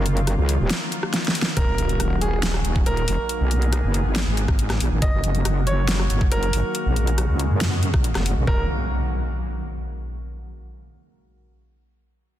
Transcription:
Already playing: F#1 D#3 F#3 A#3 F4
0.06 closed hi-hat
0.17 closed hi-hat
0.27 cross-stick, closed hi-hat
0.38 C#2
0.49 closed hi-hat
0.60 D#1
0.70 snare, closed hi-hat
0.92 closed hi-hat
1.03 cross-stick
1.14 snare, closed hi-hat
1.25 snare, closed hi-hat
1.35 open hi-hat
1.42 snare
1.57 D#1 D#3 F#3 A#3 F#4 A#4, kick, closed hi-hat, impact
1.78 closed hi-hat
1.89 closed hi-hat
2.00 D#1, cross-stick, closed hi-hat
2.21 G#4, closed hi-hat
2.43 snare, closed hi-hat
2.54 cross-stick
2.65 D#1, closed hi-hat
2.76 kick
2.86 D#1 A#4, closed hi-hat
2.97 closed hi-hat
3.08 F1, open hi-hat
3.29 B3 G#4, closed hi-hat
3.40 B1
3.51 closed hi-hat
3.62 closed hi-hat
3.73 cross-stick, closed hi-hat
3.84 F#1
3.94 closed hi-hat
4.05 G#1
4.16 snare, closed hi-hat
4.27 G#1
4.37 closed hi-hat
4.48 G#1, kick, cross-stick
4.59 closed hi-hat
4.70 cross-stick, snare, closed hi-hat
4.80 A#1, open hi-hat
4.92 G#1
5.02 F#1 F#3 A#3 F#4 D#5, kick, closed hi-hat
5.24 closed hi-hat
5.35 closed hi-hat
5.45 F#1, cross-stick, closed hi-hat
5.67 C#5, closed hi-hat
5.88 snare, closed hi-hat
5.99 cross-stick
6.10 F#1, closed hi-hat
6.21 kick
6.32 F#1 A#4, closed hi-hat
6.43 closed hi-hat
6.53 G#1, open hi-hat
6.75 C#3 G#3, closed hi-hat
6.86 A#1
6.96 closed hi-hat
7.07 closed hi-hat
7.18 cross-stick, closed hi-hat
7.29 C#2
7.39 closed hi-hat
7.51 F#2
7.61 snare, closed hi-hat
7.83 closed hi-hat
7.94 A#1, kick, cross-stick
8.04 closed hi-hat
8.15 F#1, cross-stick, snare, closed hi-hat
8.26 open hi-hat
8.37 A#1
8.47 D#1 D#3 F#3 A#3 F#4 A#4, kick, impact

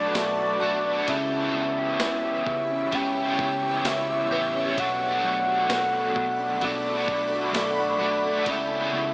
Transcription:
Already playing: B2 F#3 A3 D4 F#4 B4 D5 A5 B5
0.15 B1 A3 D5, snare, ride, tambourine
0.39 F#4
0.60 B1 A3 D4 F#4 A5
0.66 A3
0.85 D4
1.06 C#2 C#3 E3 G4 C#5 E5 B5, kick, ride
1.10 B3 C#4 G4
1.31 C#4
1.54 C#2 B3
1.77 G4
2.00 C#2 B3, snare, ride, tambourine
2.24 G4
2.46 C#3 B3, kick
2.70 C#4
2.92 C#2 C#3 E3 B3 C#4 G5 C#6, kick, ride
2.97 G4
3.16 C#4
3.38 C#2 B3, kick
3.63 G4
3.85 C#2 B3 E5, snare, ride, tambourine
4.09 G4
4.31 A1 B3 C#4 G4 B4
4.36 B3
4.55 C#4
4.77 B1 B2 F#3 A4 D5 F#5 B5, kick, ride
4.81 A3 D4 F#4
5.01 D4
5.23 B1 A3
5.47 F#4
5.69 B1 A3, snare, ride, tambourine
5.94 F#4
6.16 B2 A3, kick
6.40 D4
6.61 B1 B2 F#3 A3 D4 D5, kick, ride
6.66 F#4
6.86 D4
7.08 B1 A3, kick
7.32 F#4
7.53 B1 A3 D5, snare, ride, tambourine
7.79 F#4
7.99 B1 A3 D4 F#4
8.05 A3
8.24 D4
8.44 C#2 C#3 E3 G4 C#5 E5, kick, ride
8.48 B3 C#4 G4 E5
8.71 C#4
8.93 C#2 B3

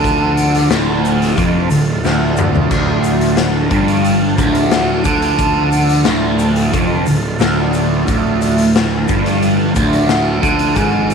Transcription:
Already playing: D2 D3 F3 F4 A4
0.04 kick, closed hi-hat, shaker
0.37 closed hi-hat, shaker
0.55 closed hi-hat
0.70 D1 D2, snare, closed hi-hat, shaker
1.05 closed hi-hat, shaker
1.22 snare, closed hi-hat, shaker
1.37 F1 F2, kick, closed hi-hat, shaker
1.70 D1 D2, closed hi-hat, shaker
1.88 shaker
2.04 D1 D2, snare, shaker
2.37 mid tom, shaker
2.54 floor tom, shaker
2.71 D1 D2, kick, crash, shaker
3.04 closed hi-hat, shaker
3.21 closed hi-hat
3.37 snare, closed hi-hat, shaker
3.70 G1 G2, kick, closed hi-hat
3.88 closed hi-hat
4.04 closed hi-hat, shaker
4.37 D1 D2, kick, closed hi-hat, shaker
4.55 closed hi-hat
4.71 snare, closed hi-hat, shaker
5.04 D2 D3, kick, closed hi-hat, shaker
5.22 closed hi-hat
5.38 kick, closed hi-hat, shaker
5.72 closed hi-hat, shaker
5.89 closed hi-hat
6.05 D1 D2, snare, closed hi-hat, shaker
6.39 closed hi-hat, shaker
6.56 closed hi-hat
6.73 F1 F2, kick, closed hi-hat, shaker
7.06 D1 D2, closed hi-hat, shaker
7.39 D1 D2, snare, closed hi-hat, shaker
7.73 closed hi-hat, shaker
8.06 D1 D2, kick, closed hi-hat, shaker
8.41 closed hi-hat, shaker
8.58 closed hi-hat
8.74 snare, closed hi-hat, shaker
9.08 G1 G2, kick, closed hi-hat, shaker
9.26 snare, closed hi-hat
9.42 closed hi-hat, shaker
9.74 D1 D2, kick, closed hi-hat, shaker
9.93 closed hi-hat
10.09 snare, closed hi-hat, shaker
10.41 D2 D3, kick, closed hi-hat, shaker
10.59 closed hi-hat
10.74 G#1 G#2, kick, closed hi-hat, shaker
11.10 closed hi-hat, shaker

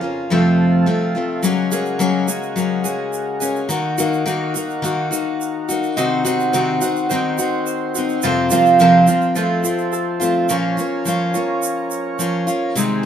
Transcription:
Already playing: F2 C#3 A#3 F4 A#4
0.01 A#3 C#4 F4
0.29 F2 C3 F3 A3 C4 F4 A4
0.86 F3 A3 C4 F4
1.15 F3 A3 C4 F4
1.43 C#3 F#3 G#3 A#3 C#4 F#4 G#4 A#4, shaker
1.71 F#3 A#3 C#4 G#4, shaker
1.86 shaker
1.99 F#3 A#3 C#4 G#4, shaker
2.28 A#3 C#4 G#4, shaker
2.43 shaker
2.56 F#3 A#3 C#4 G#4, shaker
2.84 A#3 C#4 G#4, shaker
3.13 shaker
3.40 A#3 C#4 G#4, shaker
3.56 shaker
3.69 D#3 A#3 D#4 F#4, shaker
3.98 D#3 A#3 D#4 F#4, shaker
4.13 shaker
4.26 D#3 A#3 D#4 F#4, shaker
4.54 A#3 D#4 F#4, shaker
4.70 shaker
4.82 D#3 A#3 D#4 F#4, shaker
5.11 A#3 D#4 F#4, shaker
5.41 shaker
5.68 A#3 D#4 F#4, shaker
5.83 shaker
5.97 C3 D#3 C4 D#4 F#4 C5 C6, shaker
6.25 C3 D#3 C4 D#4 F#4 F#5, shaker
6.40 shaker
6.53 C3 D#3 C4 D#4 F#4 C5, shaker
6.81 C4 D#4 F#4 F#5, shaker
6.96 shaker
7.09 D#3 C4 D#4 C5, shaker
7.14 F#4
7.38 C4 D#4 F#4 C6, shaker
7.66 C5, shaker
7.94 C4 D#4 F#4 F#5, shaker
8.09 shaker
8.22 F2 C3 F3 A#3 C4 F4 A#4 C5 C6, shaker
8.50 F2 C3 F3 A#3 C4 F4 F5, shaker
8.66 shaker
8.79 F2 C3 F3 A#3 C4 F4 A#4, shaker
9.07 F3 A#3 C4 F4 F5, shaker
9.21 shaker
9.35 F3 A3 C4 F4 A4, shaker
9.64 F3 A3 C4 F4 C6, shaker
9.78 shaker
9.92 A4, shaker
10.20 F3 A3 C4 F4 F5, shaker
10.49 A#2 F3 A#3 C#4 F4 A#4 C#5, shaker
10.77 A#3 C#4 F4, shaker
11.05 F3 A#3 C#4 F4, shaker
11.34 A#3 C#4 F4, shaker
11.62 shaker
11.91 shaker
12.19 F3 A#3 C#4 F4, shaker
12.47 A#3 C#4 F4, shaker
12.75 C3 D#3 G#3 C4 G#4 C5, shaker

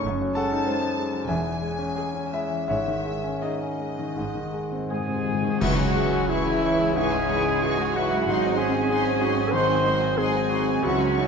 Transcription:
0.04 F#1 F#2
0.21 F#3
0.35 G#3 A4 F#5 A5
0.52 D#4
0.65 G#3 D#4 C5
0.81 D#4
0.96 G#3
1.13 F#3
1.27 E1 E2 G#4 E5 G#5
1.45 E3
1.61 G#3
1.78 C#4
1.96 G#3 G#4 C#5
2.14 C#4
2.32 G#3 E4 E5
2.50 E3
2.68 G#1 G#2 E4 C#5 E5
2.87 D#3
3.05 G#3
3.24 C#4
3.42 G#3 D#4 G#4 C#5 D#5
3.61 C#4
3.80 G#3
3.99 D#3
4.16 G#1 G#2
4.26 G#2
4.34 G#2 D#3
4.44 G#2
4.52 G#2 G#3
4.60 G#2
4.69 G#2 C4
4.76 G#2
4.84 G#2
4.90 G#2 G#3 G#4 C5 G#5
5.00 G#2
5.08 G#2 C4
5.15 G#2
5.24 G#2 G#3
5.32 G#2
5.40 G#2 D#3
5.48 G#2
5.60 C#2 C#3 E3 F#3 C#4 F#4 E5 F#5 C#6, concert bass drum, crash
5.78 G#3 C#5 G#5
5.95 E3 G#3 E5 C#6
6.13 G#3 C#5 G#5
6.28 E3 E4 G#4 E5 C#6
6.46 G#3 C#5 G#5
6.62 E3 E4 E5 C#6
6.79 G#3 C#5 G#5
6.94 G#2 E3 C#4 G#4 E5 G#5 C#6
6.98 G#3
7.13 G#3 C#5 G#5
7.29 E3 G#3 E4 E5 C#6
7.45 G#3 C#5 G#5
7.63 E3 F#4 G#4 E5 C#6
7.79 G#3 C#5 G#5
7.94 E3 F#3 E4 F#4 E5 F#5 C#6
8.10 G#3 C#5 G#5
8.27 G#1 G#2 F#3 C4 D#4 F#5 C6
8.43 C4 D#5 G#5
8.57 G#3 C4 C#4 D#4 G#4 F#5 G#5 C6
8.74 C4 D#5 G#5
8.90 D#4 G#4 F#5 C6
9.05 C4 D#5 G#5
9.21 D#4 F#4 F#5 C6
9.37 C4 D#5 G#5
9.52 D#3 C4 D#4 C5 F#5 C6
9.69 C4 D#5 G#5
9.85 G#3 C4 D#4 F#5 C6
10.02 C4 D#5 G#5
10.17 G#3 C4 D#4 G#4 F#5 G#5 C6
10.35 C4 D#5 G#5
10.50 C4 D#4 F#4 F#5 C6
10.67 C4 D#5 G#5
10.83 C#2 C#3 E3 F#3 C#4 E4 F#4 E5 F#5 C#6
11.01 C#4 C#5 G#5
11.16 C#4 D#4 E4 E5 C#6

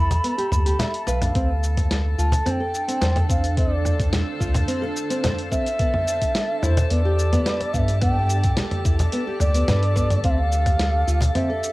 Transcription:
Already playing: E2 A4 A5 B5
0.11 cajon bass, cajon slap, closed hi-hat, cabasa
0.24 B3, closed hi-hat, cabasa
0.38 G4, cajon slap, closed hi-hat
0.52 D2, mid tom, cabasa
0.66 G4, closed hi-hat, cabasa
0.79 E5, cajon bass, snare, closed hi-hat, cabasa
0.94 closed hi-hat
1.07 B1 B4 F5, cajon slap, cabasa
1.22 D4, closed hi-hat, mid tom, cabasa
1.35 D2 C4 D4 A4 A5, kick, closed hi-hat, cabasa
1.46 A4
1.64 cabasa
1.77 kick, closed hi-hat, mid tom, cabasa
1.91 snare, closed hi-hat, cabasa
2.18 D2 F4 C5 A5, cabasa
2.32 cajon bass, cajon slap, closed hi-hat, cabasa
2.46 C4 A5, closed hi-hat, mid tom, cabasa
2.51 G5
2.60 A4 F5
2.75 cabasa
2.88 C4, closed hi-hat, cabasa
3.01 E2 C5, cajon slap, snare, closed hi-hat, cabasa
3.16 cajon slap, closed hi-hat, mid tom
3.29 C4 F5, kick, cabasa
3.44 closed hi-hat, cabasa
3.57 C4 D5, kick, closed hi-hat, cabasa
3.85 mid tom, cabasa
4.00 kick, closed hi-hat, cabasa
4.13 cajon bass, snare, closed hi-hat, cabasa
4.40 D2 F4, kick, cabasa
4.54 cajon bass, cajon slap, closed hi-hat, mid tom, cabasa
4.68 C4, closed hi-hat, cabasa
4.82 A4, cajon slap
4.97 cabasa
5.10 C4, closed hi-hat, cabasa
5.23 C5, cajon bass, snare, closed hi-hat, mid tom, cabasa
5.38 closed hi-hat
5.51 C4 E5, kick, cajon slap, cabasa
5.66 closed hi-hat, cabasa
5.79 B3 G4, kick, closed hi-hat, cabasa
5.94 mid tom
5.99 D5
6.08 cabasa
6.22 kick, closed hi-hat, cabasa
6.35 snare, closed hi-hat, cabasa
6.62 E2 E4 C#5, mid tom, cabasa
6.67 C5
6.77 cajon bass, cajon slap, closed hi-hat, cabasa
6.90 E2 B3 D5, closed hi-hat, cabasa
7.05 G4
7.19 cabasa
7.33 B3, closed hi-hat, mid tom, cabasa
7.46 B4, snare, cajon slap, closed hi-hat, cabasa
7.60 cajon slap, closed hi-hat
7.74 G2 B3 F5, kick, cabasa
7.78 E5
7.88 closed hi-hat, cabasa
8.02 B3 G5, kick, closed hi-hat, mid tom, cabasa
8.30 cabasa
8.43 kick, closed hi-hat, cabasa
8.57 cajon bass, snare, closed hi-hat, cabasa
8.71 closed hi-hat, mid tom
8.85 E2 E4, kick, cabasa
8.99 cajon bass, cajon slap, closed hi-hat, cabasa
9.12 B3, closed hi-hat, cabasa
9.27 G4, cajon slap
9.40 D2 D5, mid tom, cabasa
9.54 B3, closed hi-hat, cabasa
9.68 G2 B4, cajon bass, snare, closed hi-hat, cabasa
9.83 closed hi-hat
9.96 B3, kick, cajon slap, cabasa
10.10 closed hi-hat, mid tom, cabasa
10.24 D2 C4 D4 F5, kick, closed hi-hat, cabasa
10.31 E5
10.39 F5
10.46 A4
10.52 cabasa
10.60 C5
10.66 kick, closed hi-hat, mid tom, cabasa
10.79 snare, closed hi-hat, cabasa
11.07 D2 F4, cabasa
11.21 cajon bass, cajon slap, closed hi-hat, cabasa
11.35 C4 E5, closed hi-hat, mid tom, cabasa
11.50 A4
11.64 cabasa

